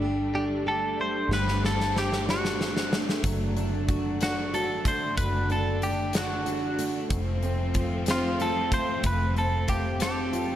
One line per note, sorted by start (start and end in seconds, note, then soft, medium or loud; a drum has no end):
0.00 1.26 G1 medium
0.00 0.92 D3 medium
0.00 1.30 G3 medium
0.00 3.21 G3 medium
0.00 7.08 A3 medium
0.00 0.34 D4 soft
0.00 1.27 D4 medium
0.00 0.65 G4 medium
0.35 1.63 D4 medium
0.35 0.44 G4 medium
0.66 1.95 G4 medium
0.66 1.00 A4 medium
1.00 2.91 A3 medium
1.00 1.33 C5 medium
1.29 3.19 G1 medium
1.29 3.24 G3 medium
1.29 3.22 C4 medium
1.29 snare medium
1.33 1.65 B4 medium
1.48 snare soft
1.64 2.27 D4 soft
1.64 1.97 A4 medium
1.64 snare medium
1.80 snare medium
1.96 2.30 G4 medium
1.96 snare medium
2.12 snare medium
2.27 3.57 D4 soft
2.27 2.97 F#4 medium
2.27 snare medium
2.45 snare medium
2.61 snare medium
2.77 snare medium
2.92 4.85 A3 soft
2.92 snare medium
3.09 snare medium
3.23 5.13 F#1 medium
3.23 7.06 D3 medium
3.23 5.18 F#3 medium
3.23 7.07 D4 medium
3.23 kick medium
3.23 closed hi-hat medium
3.57 4.20 D4 soft
3.57 closed hi-hat soft
3.89 4.52 F#4 medium
3.89 kick medium
3.89 closed hi-hat soft
4.21 5.49 D4 medium
4.21 4.55 F#4 medium
4.21 snare medium
4.21 closed hi-hat medium
4.54 5.82 F#4 medium
4.54 4.84 A4 medium
4.54 closed hi-hat soft
4.85 6.78 A3 medium
4.85 5.17 C5 medium
4.85 kick medium
4.85 closed hi-hat medium
5.17 7.07 F#1 medium
5.17 5.51 B4 medium
5.17 kick loud
5.17 closed hi-hat medium
5.50 6.13 D4 medium
5.50 5.81 A4 medium
5.50 closed hi-hat soft
5.82 6.16 G4 medium
5.82 closed hi-hat soft
6.13 7.17 D4 medium
6.13 6.84 F#4 medium
6.13 snare loud
6.13 closed hi-hat medium
6.46 7.17 F#4 medium
6.46 closed hi-hat soft
6.79 8.71 A3 medium
6.79 closed hi-hat medium
7.08 9.00 F1 medium
7.08 9.03 F2 medium
7.08 10.56 F3 medium
7.08 10.56 A3 medium
7.08 10.56 C4 medium
7.08 kick loud
7.08 closed hi-hat medium
7.42 8.06 C4 medium
7.42 closed hi-hat soft
7.74 8.39 F4 medium
7.74 kick medium
7.74 closed hi-hat medium
8.06 9.36 C4 medium
8.06 snare medium
8.06 closed hi-hat medium
8.11 8.42 F4 medium
8.40 9.66 F4 medium
8.40 8.71 A4 medium
8.40 closed hi-hat soft
8.71 10.56 A3 medium
8.71 9.03 C5 medium
8.71 kick medium
8.71 closed hi-hat medium
9.03 10.56 F1 medium
9.03 10.56 F2 medium
9.03 9.35 B4 medium
9.03 kick loud
9.03 closed hi-hat medium
9.37 9.99 C4 medium
9.37 9.67 A4 medium
9.37 closed hi-hat soft
9.67 10.32 F4 medium
9.67 10.01 G4 medium
9.67 kick medium
9.67 closed hi-hat medium
10.00 10.56 C4 medium
10.00 10.56 G4 loud
10.00 10.56 A4 medium
10.00 snare medium
10.00 closed hi-hat medium
10.33 10.56 F4 medium
10.33 closed hi-hat medium